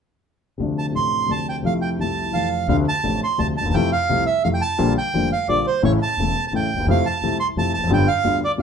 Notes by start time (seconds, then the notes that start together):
0.58 D2 C3 D3 F3 A3
0.62 D4
0.78 A5
0.91 A1 A2 C3 F3 A3 D4
0.96 C6
1.26 D2 C3 D3 F3 A3
1.31 D4 A5
1.49 G5
1.63 F2 C3 F3 A3 F5
1.67 E4
1.82 G5
1.99 C2 C3 F3 A3 E4 A5
2.32 F2 C3 F3 A3 F5
2.36 E3
2.68 D2 C3 D3 F3 A3 D4 F5
2.88 A5
3.03 A1 A2 C3 F3 A3 D4
3.24 C6
3.38 D2 C3 D3 F3 A3 D4 A5
3.57 D2 A5
3.66 D#2
3.70 E2
3.74 F2 C3 F3 A3 E4 G5
3.92 F5
4.09 C2 C3 F3 A3 E4
4.26 E5
4.44 F2 C3 F3 A3 E4 F5
4.54 G5
4.61 A5
4.78 A#1 A#2 D3 G3 A#3 F4
4.98 G5
5.14 F1 F2 D3 G3 A#3 F4
5.32 F5
5.48 A#1 A#2 D3 G3 A#3 F4 D5
5.67 C5
5.83 A1 A2 C#3 E3 A3 E4 C#5
6.02 A5
6.17 E1 E2 C#3 E3 A3 E4
6.47 A1 A5
6.53 A1 A2 C#3 E3 A3 E4 G5
6.74 D2
6.79 D#2 E2
6.84 E2 F2
6.88 F2 C3 F3 A3 E4 F5
7.06 A5
7.22 C2 C3 F3 A3 E4
7.40 C6
7.56 F2 C3 F3 A3 E4 A5
7.74 A5
7.78 E1 F1 E2
7.84 F#1 F2 F#2
7.89 G1 G2 D3 G3 B3 F4 G5
8.08 F5
8.24 D2 D3 G3 B3 F4
8.45 D5
8.57 G1 G2 D3 G3 B3 F4